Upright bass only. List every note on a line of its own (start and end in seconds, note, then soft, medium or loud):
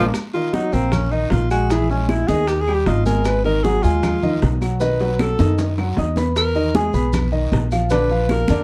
0.73 1.28 A#1 medium
1.31 2.23 A#1 medium
2.29 2.83 D#2 medium
2.87 3.78 G#1 medium
3.84 4.38 D#2 medium
4.42 5.33 B1 medium
5.40 5.94 F#2 medium
5.98 6.89 E2 medium
6.94 7.48 B1 medium
7.52 8.43 A#1 medium
8.49 8.64 F2 medium